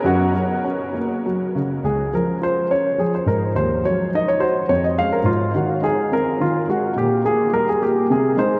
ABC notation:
X:1
M:3/4
L:1/16
Q:1/4=105
K:F#
V:1 name="Grand piano"
F8- F2 z2 | [K:Db] A2 B2 c2 d2 A c B2 | c2 d2 e d c2 d e f B | F2 G2 A2 B2 F2 G2 |
=G2 A2 B A G2 A2 c2 |]
V:2 name="Grand piano" clef=bass
F,,2 F,2 C2 A,2 F,2 C,2 | [K:Db] D,,2 F,2 F2 D2 F,2 A,,2 | E,,2 G,2 E2 G2 F,,2 [A,D]2 | A,,2 E,2 E2 C2 E,2 A,2 |
B,,2 B,2 =G,2 B,2 C,2 [A,E]2 |]